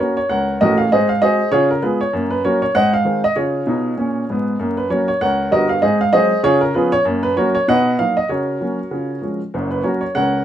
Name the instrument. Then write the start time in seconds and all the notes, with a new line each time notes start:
upright piano
0.00 A#3 C#4 F#4 A#4 C#5
0.17 C#5
0.29 C#2 A#4 C#5 F#5
0.61 A1 A2 F#4 A#4 D#5
0.78 F5
0.92 G#2 C4 G#4 C5 D#5
1.09 F5
1.22 G#3 C4 F#4 G#4 C5 D#5
1.52 C#3 F4 G#4 C#5
1.71 A#4
1.82 G#3 B3 F4 G#4 B4
2.01 C#5
2.13 F#2 A#3
2.30 B4
2.44 F#3 A#3 C#4 F#4 A#4 C#5
2.62 C#5
2.75 G#2 C4 C5 D#5 F#5
2.93 F5
3.05 D#3 G#3 C4
3.24 D#5
3.36 C#3 F4 G#4 C#5
3.67 B2 D#4
3.97 A#2 C#4
4.30 G#2 B3
4.59 F#2 A#3
4.77 B4
4.90 F#3 A#3 C#4 F#4 A#4 C#5
5.08 C#5
5.21 C#2 A#4 C#5 F#5
5.51 G1 G2 F#4 A#4 D#5
5.69 F5
5.82 G#2 C4 G#4 C5 D#5
6.01 F5
6.13 F#3 G#3 C4 G#4 C5 D#5
6.43 C#3 F4 G#4 C#5
6.61 A#4
6.75 F3 B3 C#4 F4 G#4 B4
6.92 C#5
7.05 F#2 A#3
7.23 B4
7.37 F#3 A#3 C#4 F#4 A#4 C#5
7.55 C#5
7.68 B2 D#4 B4 D#5 F#5
7.99 F#3 A#3 D#4 F5
8.17 D#5
8.29 C#3 F#4 A#4 C#5
8.61 F#3 A#3 C#4
8.91 C#3 F4
9.22 F3 G#3 C#4
9.54 F#1 F#2
9.71 B4
9.83 F#3 A#3 C#4 F#4 A#4 C#5
10.01 C#5
10.15 C#2 C#3 A#4 C#5 F#5